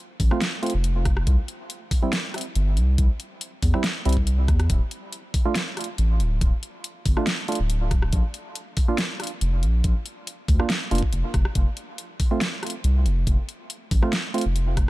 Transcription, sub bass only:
0.20 0.30 A1 loud
0.74 1.26 F1 medium
1.27 1.37 C2 loud
2.55 2.78 G1 medium
2.77 2.97 C2 loud
2.98 3.09 C2 loud
3.63 3.73 E2 loud
4.06 4.50 C2 medium
4.48 4.68 E2 loud
4.70 4.80 D1 loud
5.98 6.21 A1 medium
6.20 6.40 D1 loud
6.41 6.52 D1 loud
7.06 7.16 G1 loud
7.60 8.11 D1 loud
8.13 8.23 A#1 loud
9.41 9.64 F1 medium
9.63 9.82 A#1 loud
9.84 9.95 A#1 loud
10.48 10.59 D2 loud
10.91 11.02 F1 loud
11.13 11.23 F1 loud
11.34 11.44 F1 loud
11.56 11.66 F1 loud
12.84 13.07 C2 medium
13.05 13.25 F1 loud
13.27 13.37 F1 loud
13.91 14.02 A1 loud
14.46 14.90 F1 medium

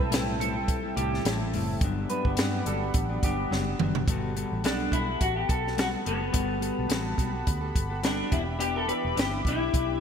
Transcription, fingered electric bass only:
0.00 0.93 B1 loud
0.97 1.19 C2 medium
1.25 1.55 A1 medium
1.54 1.76 F#1 loud
1.81 2.04 G1 loud
2.25 2.35 G1 loud
2.38 2.61 G2 medium
2.66 2.89 G1 medium
2.95 3.17 A1 medium
3.23 3.46 G1 medium
3.51 3.74 F#1 medium
3.79 4.02 F#1 medium
4.08 4.43 G1 loud
4.51 4.64 A1 medium
4.64 4.87 B1 medium
4.92 5.15 B1 medium
5.21 5.44 A1 medium
5.49 5.95 B1 medium
6.06 6.29 F#1 medium
6.34 6.69 G1 loud
6.79 6.89 B1 medium
6.90 7.13 A1 medium
7.19 7.42 B1 medium
7.47 7.70 D2 loud
7.76 8.21 G1 medium
8.32 8.90 E1 medium
9.05 9.15 E1 medium
9.17 9.40 G1 medium
9.46 9.68 B1 medium
9.74 9.97 B1 medium

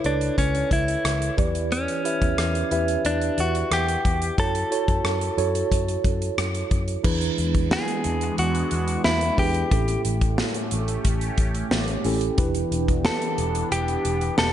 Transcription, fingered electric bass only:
0.05 0.29 C#2 medium
0.38 0.62 C#2 medium
0.71 0.95 C#2 medium
1.05 1.29 C#2 medium
1.38 1.86 E2 medium
2.22 2.34 E2 medium
2.38 2.62 E2 loud
2.71 2.95 E2 medium
3.05 3.29 E2 medium
3.38 3.62 E2 medium
3.71 3.95 E2 medium
4.05 4.29 E2 medium
4.38 4.62 F#2 loud
4.88 5.00 F#2 medium
5.04 5.28 F#2 medium
5.38 5.62 F#2 medium
5.72 5.96 F#2 medium
6.04 6.29 F#2 medium
6.38 6.62 F#2 medium
6.71 6.95 F#2 medium
7.04 7.29 E2 medium
7.38 7.74 E2 medium
8.05 8.29 E2 medium
8.38 8.62 E2 medium
8.72 8.96 E2 medium
9.05 9.29 E2 medium
9.38 9.62 E2 medium
9.71 9.95 A1 loud
10.05 10.41 A1 medium
10.72 10.96 A1 medium
11.05 11.29 A1 loud
11.38 11.62 A1 medium
11.71 11.95 A1 medium
12.05 12.29 A1 medium
12.38 12.62 E1 loud
12.71 13.07 E1 medium
13.38 13.62 E1 medium
13.71 13.95 E1 loud
14.05 14.29 E1 medium
14.38 14.53 E1 medium

